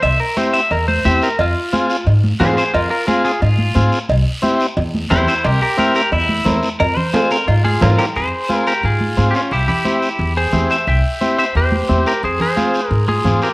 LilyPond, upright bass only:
\new Staff \with { instrumentName = "Upright bass" } { \clef bass \time 4/4 \key f \minor \tempo 4 = 177 c,8 r4. e,4 e,8 r8 | f,8 r4. aes,4 aes,8 r8 | f,8 r4. aes,4 aes,8 r8 | c,8 r4. e,4 e,8 r8 |
c,8 r4. e,4 e,8 r8 | f,8 r4. aes,4 aes,8 r8 | f,8 r4. aes,4 aes,8 r8 | c,8 r4. e,4 e,8 r8 |
c,8 r4. e,4 e,8 r8 | f,8 r4. aes,4 aes,8 r8 | }